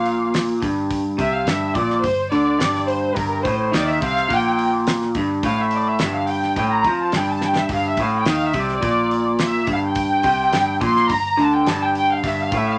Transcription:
0.00 0.58 A#1 medium
0.00 0.62 A#2 loud
0.00 0.30 F5 loud
0.06 open hi-hat medium
0.34 snare loud
0.34 open hi-hat medium
0.62 1.15 G1 medium
0.62 1.18 G2 loud
0.62 kick loud
0.62 open hi-hat medium
0.91 kick loud
0.91 open hi-hat medium
1.18 1.45 C2 medium
1.18 1.46 C3 loud
1.18 1.34 E5 medium
1.18 kick loud
1.18 open hi-hat medium
1.35 1.48 F5 medium
1.45 1.73 G1 medium
1.45 1.75 G2 loud
1.45 1.77 E5 medium
1.45 snare loud
1.45 open hi-hat medium
1.75 2.02 A#1 medium
1.75 2.03 A#2 loud
1.75 2.04 D5 medium
1.75 kick loud
1.75 open hi-hat medium
1.90 snare soft
2.02 2.30 G1 medium
2.02 2.27 G2 medium
2.02 2.30 C5 medium
2.02 kick medium
2.02 open hi-hat medium
2.30 2.59 D2 medium
2.30 2.60 D3 loud
2.30 2.84 D5 medium
2.30 open hi-hat medium
2.59 3.14 G1 loud
2.59 3.14 G2 loud
2.59 snare loud
2.59 open hi-hat medium
2.75 snare soft
2.88 3.17 C5 medium
2.88 open hi-hat medium
3.15 3.43 G1 medium
3.15 3.44 G2 loud
3.15 3.45 A#4 medium
3.15 kick loud
3.15 open hi-hat medium
3.44 3.72 A1 medium
3.44 3.72 A2 medium
3.44 3.73 C5 medium
3.44 kick loud
3.44 open hi-hat medium
3.72 4.01 D#2 loud
3.72 4.01 D#3 loud
3.72 3.88 D5 loud
3.72 snare loud
3.72 open hi-hat medium
3.88 4.02 E5 loud
4.01 4.29 C2 medium
4.01 4.29 C3 loud
4.01 kick loud
4.01 open hi-hat medium
4.07 4.33 F5 loud
4.17 snare soft
4.30 5.12 A#1 medium
4.30 5.14 A#2 loud
4.30 kick loud
4.30 open hi-hat medium
4.34 4.61 G5 loud
4.59 open hi-hat medium
4.87 snare loud
4.87 open hi-hat medium
5.02 snare soft
5.15 5.42 G1 medium
5.15 5.44 G2 loud
5.15 kick loud
5.15 open hi-hat medium
5.43 5.97 A1 medium
5.43 6.00 A2 loud
5.43 5.58 F5 medium
5.43 kick loud
5.43 open hi-hat medium
5.59 5.73 E5 medium
5.71 open hi-hat medium
5.75 5.88 D5 medium
5.86 6.15 E5 medium
5.99 6.54 G1 medium
5.99 6.57 G2 loud
5.99 snare loud
5.99 open hi-hat medium
6.13 6.28 F5 medium
6.27 6.55 G5 medium
6.27 open hi-hat medium
6.42 snare soft
6.56 6.83 A1 medium
6.56 6.85 A2 loud
6.56 6.70 G5 medium
6.56 kick loud
6.56 open hi-hat medium
6.72 6.98 A#5 medium
6.84 7.11 F2 medium
6.84 7.14 F3 loud
6.84 kick medium
6.84 open hi-hat medium
7.02 7.14 A5 medium
7.12 7.66 G1 loud
7.12 7.69 G2 loud
7.12 snare loud
7.12 open hi-hat medium
7.17 7.30 G5 medium
7.30 7.43 A5 medium
7.41 7.58 G5 medium
7.41 snare medium
7.56 7.72 E5 medium
7.56 snare medium
7.69 7.96 G1 medium
7.69 7.98 G2 loud
7.69 kick loud
7.69 open hi-hat medium
7.73 7.85 F5 medium
7.89 8.01 E5 medium
7.97 8.24 A1 medium
7.97 8.26 A2 loud
7.97 kick loud
7.97 open hi-hat medium
8.03 8.15 F5 medium
8.20 8.31 G5 medium
8.26 8.53 D#2 medium
8.26 8.54 D#3 loud
8.26 snare loud
8.26 open hi-hat medium
8.32 8.43 F5 medium
8.45 8.57 E5 medium
8.53 8.81 C2 medium
8.53 8.81 C3 loud
8.53 kick loud
8.53 open hi-hat medium
8.61 8.72 D5 medium
8.69 snare soft
8.76 9.26 D5 loud
8.82 9.64 A#1 medium
8.82 9.67 A#2 loud
8.82 kick loud
8.82 open hi-hat medium
9.11 open hi-hat medium
9.39 snare loud
9.39 open hi-hat medium
9.44 9.69 E5 medium
9.67 10.21 G1 medium
9.67 10.24 G2 loud
9.67 kick loud
9.67 open hi-hat medium
9.73 9.79 F5 medium
9.87 10.80 G5 loud
9.95 kick loud
9.95 open hi-hat medium
10.23 10.51 C2 medium
10.23 10.52 C3 loud
10.23 kick loud
10.23 open hi-hat medium
10.52 10.80 G1 medium
10.52 10.81 G2 loud
10.52 snare loud
10.52 open hi-hat medium
10.81 11.08 A#1 loud
10.81 11.09 A#2 loud
10.81 11.10 C6 loud
10.81 kick loud
10.81 open hi-hat medium
10.97 snare soft
11.09 11.37 G1 medium
11.09 11.33 G2 medium
11.09 11.39 A#5 loud
11.09 kick medium
11.09 open hi-hat medium
11.37 11.65 D2 medium
11.37 11.66 D3 loud
11.37 open hi-hat medium
11.42 11.55 A5 loud
11.54 11.68 G5 medium
11.66 12.20 G1 loud
11.66 12.23 G2 loud
11.66 11.82 A5 loud
11.66 snare loud
11.66 open hi-hat medium
11.84 11.97 G5 medium
11.95 12.10 G5 medium
11.95 open hi-hat medium
12.12 12.25 F5 medium
12.23 12.50 G1 loud
12.23 12.52 G2 loud
12.23 12.40 E5 medium
12.23 kick loud
12.23 open hi-hat medium
12.42 12.55 F5 medium
12.52 12.79 A1 medium
12.52 12.78 A2 loud
12.52 kick loud
12.52 open hi-hat medium
12.57 12.69 E5 medium
12.68 12.79 F5 medium

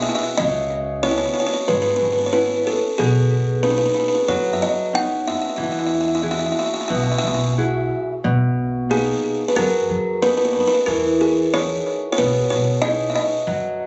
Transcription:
0.00 0.27 B3 soft
0.00 0.27 E4 soft
0.00 0.28 G#4 soft
0.00 0.08 E5 medium
0.09 0.14 E5 medium
0.15 0.22 E5 medium
0.23 0.31 E5 soft
0.38 1.24 C#2 loud
0.38 1.03 C#3 medium
0.38 0.99 D#5 medium
1.03 1.56 B3 soft
1.03 1.56 C#4 soft
1.03 1.56 E4 soft
1.03 1.10 C#5 medium
1.11 1.16 C#5 medium
1.18 1.24 C#5 medium
1.25 1.32 C#5 medium
1.34 1.39 C#5 medium
1.40 1.45 C#5 medium
1.47 1.52 C#5 medium
1.54 1.61 C#5 medium
1.68 1.90 G#1 medium
1.68 2.31 G#3 medium
1.68 1.74 B4 medium
1.75 1.81 B4 soft
1.82 1.89 B4 medium
1.90 1.95 B4 medium
1.96 2.02 B4 medium
2.02 2.65 G#1 medium
2.02 2.11 B4 soft
2.12 2.17 B4 soft
2.19 2.26 B4 soft
2.26 2.33 C#5 medium
2.32 2.85 B3 soft
2.32 2.85 C#4 soft
2.32 2.85 E4 medium
2.32 2.63 B4 medium
2.67 2.96 A4 medium
2.98 3.84 B1 loud
2.98 3.62 B2 medium
2.98 3.65 G#4 medium
3.63 4.15 B3 soft
3.63 4.15 C#4 soft
3.63 4.16 D#4 soft
3.63 3.69 B4 medium
3.70 3.77 B4 medium
3.78 3.84 B4 medium
3.86 3.93 B4 medium
3.94 3.98 B4 medium
4.00 4.07 B4 medium
4.08 4.14 B4 medium
4.15 4.21 B4 medium
4.28 4.50 F#2 medium
4.28 4.91 F#3 medium
4.28 4.52 C#5 medium
4.53 4.61 E5 medium
4.62 5.24 F#2 medium
4.62 4.95 D#5 medium
4.93 5.45 B3 soft
4.93 5.45 C#4 soft
4.93 5.46 D#4 medium
4.93 5.25 F#5 loud
5.27 5.33 E5 medium
5.35 5.40 E5 medium
5.42 5.48 E5 medium
5.49 5.55 E5 soft
5.56 6.43 E2 medium
5.56 6.21 E3 medium
5.56 5.62 E5 soft
5.64 5.70 E5 soft
5.72 5.78 E5 medium
5.79 5.85 E5 soft
5.87 5.93 E5 medium
5.95 6.00 E5 soft
6.01 6.07 E5 soft
6.08 6.14 E5 soft
6.15 6.21 E5 medium
6.22 6.76 E4 soft
6.22 6.76 F#4 soft
6.22 6.76 G#4 soft
6.22 6.29 E5 soft
6.31 6.37 E5 medium
6.39 6.45 E5 soft
6.46 6.51 E5 soft
6.52 6.58 E5 soft
6.59 6.65 E5 medium
6.66 6.73 E5 soft
6.74 6.80 E5 medium
6.81 6.87 E5 soft
6.88 7.12 B1 medium
6.88 7.55 B2 medium
6.88 6.95 E5 medium
6.96 7.02 E5 soft
7.03 7.10 E5 soft
7.12 7.17 E5 soft
7.18 7.26 E5 medium
7.24 7.89 B1 medium
7.24 7.33 E5 medium
7.34 7.41 E5 medium
7.58 8.11 E4 soft
7.58 8.11 F#4 soft
7.58 8.12 G#4 medium
8.24 9.10 B1 medium
8.24 8.88 B2 medium
8.89 9.43 A#3 soft
8.89 9.43 B3 soft
8.89 9.43 D#4 soft
8.89 9.52 G#4 medium
9.48 9.56 B4 medium
9.56 9.78 F#2 medium
9.56 10.20 F#3 medium
9.56 10.24 A#4 medium
9.90 10.54 F#2 medium
10.22 10.74 A#3 soft
10.22 10.75 B3 medium
10.22 10.75 D#4 medium
10.22 10.28 B4 medium
10.29 10.36 B4 soft
10.38 10.44 B4 medium
10.45 10.52 B4 soft
10.53 10.59 B4 medium
10.60 10.66 B4 medium
10.67 10.73 B4 medium
10.74 10.81 B4 medium
10.86 11.72 E2 medium
10.86 11.52 E3 medium
10.86 11.18 A#4 medium
11.21 11.51 G#4 medium
11.54 12.06 D#4 soft
11.54 12.06 E4 soft
11.54 12.06 G#4 medium
11.54 12.08 C#5 loud
12.12 12.19 C#5 medium
12.18 12.40 B1 medium
12.18 12.81 B2 medium
12.18 12.52 B4 medium
12.50 13.14 B1 medium
12.50 12.80 C#5 medium
12.82 13.34 D#4 medium
12.82 13.34 E4 soft
12.82 13.35 G#4 medium
12.82 13.06 D#5 loud
13.10 13.16 E5 medium
13.16 13.45 D#5 medium
13.47 13.87 F#2 loud
13.47 13.87 F#3 medium

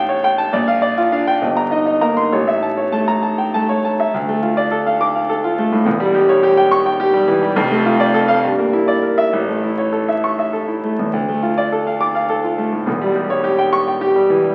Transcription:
0.00 0.49 A1 loud
0.00 0.09 C#5 loud
0.00 0.56 F5 medium
0.00 0.24 G5 loud
0.00 0.38 A5 loud
0.09 0.32 C#5 medium
0.24 0.47 G5 loud
0.38 0.53 A5 loud
0.53 1.39 A#1 loud
0.53 0.77 D5 medium
0.68 0.91 F5 loud
0.82 1.06 D5 medium
0.98 1.21 F4 loud
1.12 1.36 D4 medium
1.12 1.36 F5 medium
1.27 1.42 G5 loud
1.42 2.30 G1 medium
1.42 1.66 D#5 medium
1.57 1.81 A#5 medium
1.71 1.85 D#4 medium
1.71 1.96 D#5 medium
1.86 2.11 D#4 medium
2.01 2.26 A#3 medium
2.01 2.26 A#5 medium
2.17 2.32 C6 medium
2.32 4.10 A1 medium
2.32 2.57 C#5 medium
2.48 2.72 E5 medium
2.63 2.87 A5 medium
2.77 3.02 C#5 medium
2.92 3.17 A3 medium
2.92 3.17 A5 medium
3.08 3.23 A#5 medium
3.23 3.47 A5 medium
3.38 3.53 G5 medium
3.54 3.78 A3 medium
3.54 3.78 A5 medium
3.69 3.93 C#5 medium
3.85 4.08 A5 medium
4.00 4.14 E5 medium
4.14 5.83 D2 medium
4.29 4.51 A3 medium
4.42 4.66 F4 medium
4.57 4.80 D5 medium
4.71 4.95 A4 medium
4.86 5.09 F5 medium
5.01 5.24 D6 loud
5.15 5.38 F5 medium
5.29 5.53 A4 medium
5.44 5.67 F4 medium
5.58 5.81 A3 medium
5.72 5.87 A2 medium
5.85 7.52 E1 medium
5.85 7.53 E2 medium
6.00 6.23 G3 medium
6.15 6.38 G4 medium
6.29 6.52 C#5 medium
6.43 6.66 G4 loud
6.57 6.80 G5 loud
6.71 6.94 C#6 loud
6.86 7.09 G5 medium
7.00 7.23 G4 loud
7.14 7.37 G3 medium
7.28 7.51 E3 loud
7.43 7.57 G3 medium
7.55 8.41 F1 loud
7.55 8.41 F2 loud
7.71 7.94 A3 loud
7.86 8.09 F4 medium
8.00 8.24 D5 loud
8.14 8.38 A4 loud
8.28 8.44 F5 loud
8.44 9.31 G2 medium
8.59 8.83 A#3 medium
8.73 8.97 E4 medium
8.88 9.12 D5 medium
9.03 9.27 A#4 medium
9.18 9.33 E5 loud
9.33 11.09 A1 medium
9.48 9.72 A3 medium
9.64 9.88 E4 medium
9.78 10.02 C#5 medium
9.92 10.17 A4 medium
10.08 10.33 E5 medium
10.24 10.48 C#6 medium
10.39 10.63 E5 medium
10.53 10.77 A4 medium
10.68 10.93 E4 medium
10.84 11.08 A3 medium
10.99 11.14 E2 medium
11.13 12.83 D2 medium
11.29 11.52 A3 medium
11.43 11.66 F4 medium
11.58 11.81 D5 medium
11.72 11.95 A4 medium
11.87 12.10 F5 medium
12.01 12.24 D6 loud
12.15 12.38 F5 medium
12.29 12.53 A4 medium
12.44 12.67 F4 medium
12.58 12.81 A3 medium
12.72 12.87 A2 medium
12.86 14.54 E1 medium
12.86 14.55 E2 medium
13.01 13.24 G3 medium
13.16 13.39 G4 medium
13.30 13.53 C#5 medium
13.44 13.67 G4 medium
13.59 13.81 G5 medium
13.73 13.96 C#6 loud
13.88 14.10 G5 medium
14.01 14.24 G4 medium
14.16 14.39 G3 medium
14.30 14.53 E3 medium
14.44 14.55 G3 medium

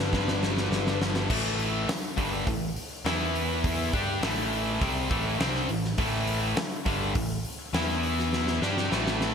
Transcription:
0.00 0.11 G1 medium
0.00 0.10 G2 medium
0.00 0.12 D3 medium
0.00 0.12 G3 medium
0.00 0.97 B4 medium
0.11 0.68 G1 medium
0.11 1.28 G2 medium
0.11 1.29 D3 medium
0.11 1.29 G3 medium
0.11 kick medium
0.11 snare medium
0.28 snare medium
0.43 snare loud
0.57 snare medium
0.71 1.26 G1 medium
0.71 snare medium
0.87 snare medium
1.01 snare loud
1.16 snare loud
1.29 1.85 A1 medium
1.29 1.87 A2 loud
1.29 1.88 E3 loud
1.29 1.88 A3 loud
1.29 kick loud
1.29 crash loud
1.60 open hi-hat medium
1.88 muted picked electric bass stroke soft
1.88 muted distorted electric guitar stroke medium
1.88 muted overdriven electric guitar stroke medium
1.88 snare loud
1.88 open hi-hat loud
2.16 2.45 G1 medium
2.16 2.46 G2 loud
2.16 2.46 D3 loud
2.16 2.46 G3 medium
2.16 kick loud
2.16 open hi-hat medium
2.47 2.74 A1 medium
2.47 2.70 A2 medium
2.47 2.71 E3 medium
2.47 kick loud
2.47 open hi-hat medium
2.76 open hi-hat medium
3.05 3.89 E2 medium
3.05 3.92 E3 loud
3.05 3.93 B3 medium
3.05 3.93 E4 loud
3.05 snare loud
3.05 open hi-hat medium
3.35 open hi-hat medium
3.64 kick loud
3.64 open hi-hat medium
3.93 4.21 G2 medium
3.93 4.22 G3 medium
3.93 4.22 D4 loud
3.93 4.23 G4 loud
3.93 kick loud
3.93 open hi-hat medium
4.22 4.77 A1 medium
4.22 4.80 A2 medium
4.22 4.81 E3 medium
4.22 4.81 A3 medium
4.22 snare loud
4.22 open hi-hat medium
4.53 open hi-hat medium
4.80 5.09 C2 loud
4.80 5.09 C3 medium
4.80 5.10 G3 medium
4.80 5.10 C4 loud
4.80 kick loud
4.80 open hi-hat medium
5.09 5.38 A1 medium
5.09 5.38 A2 loud
5.09 5.39 E3 medium
5.09 5.39 A3 loud
5.09 kick loud
5.09 open hi-hat medium
5.39 5.67 C2 medium
5.39 5.68 C3 loud
5.39 5.68 G3 loud
5.39 5.68 C4 loud
5.39 snare loud
5.39 open hi-hat medium
5.55 snare soft
5.69 5.96 A1 medium
5.69 5.93 A2 medium
5.69 5.93 E3 medium
5.69 open hi-hat medium
5.84 snare soft
5.98 6.53 A1 loud
5.98 6.56 A2 medium
5.98 6.56 E3 loud
5.98 6.57 A3 medium
5.98 kick loud
5.98 open hi-hat medium
6.27 open hi-hat medium
6.57 muted distorted electric guitar stroke medium
6.57 muted picked electric bass stroke soft
6.57 muted overdriven electric guitar stroke medium
6.57 snare loud
6.57 open hi-hat loud
6.85 7.13 G1 loud
6.85 7.14 G2 medium
6.85 7.15 D3 medium
6.85 7.15 G3 loud
6.85 kick loud
6.85 open hi-hat medium
7.15 7.43 A1 medium
7.15 7.39 A2 medium
7.15 7.39 E3 medium
7.15 kick loud
7.15 open hi-hat loud
7.45 open hi-hat medium
7.73 8.58 E2 medium
7.73 8.61 E3 medium
7.73 8.61 B3 medium
7.73 8.61 E4 medium
7.73 snare loud
7.73 open hi-hat medium
7.89 snare soft
8.03 open hi-hat medium
8.18 snare soft
8.33 snare medium
8.47 snare medium
8.62 8.89 G2 medium
8.62 8.90 G3 medium
8.62 8.91 D4 loud
8.62 8.91 G4 loud
8.62 snare medium
8.77 snare medium
8.90 9.34 A1 medium
8.90 9.34 A2 medium
8.90 9.34 E3 medium
8.90 9.34 A3 loud
8.90 snare medium
9.07 snare medium
9.21 snare medium

